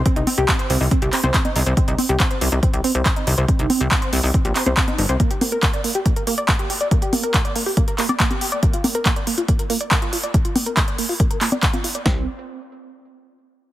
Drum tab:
HH |xxoxxxooxxoxxxox|xxoxxxoxxxoxxxox|xxoxxxooxxoxxxox|xxoxxxoxxxoxxxox|
CP |----x-----x-x---|----x-------x---|----x-----x-x---|----x-------x---|
SD |----------------|----------------|----------------|----------------|
CG |--o--------o-o--|--o-------------|--o--------o-o--|--o-------------|
BD |o---o---o---o---|o---o---o---o---|o---o---o---o---|o---o---o---o---|

HH |xxoxxxooxxoxxxox|xxoxxxoxxxoxxxox|xxoxxxooxxoxxxox|----------------|
CP |----x-----x-x---|----x-------x---|----x-----x-x---|----------------|
SD |----------------|----------------|----------------|o---------------|
CG |--o--------o-o--|--o-------------|--o--------o-o--|----------------|
BD |o---o---o---o---|o---o---o---o---|o---o---o---o---|o---------------|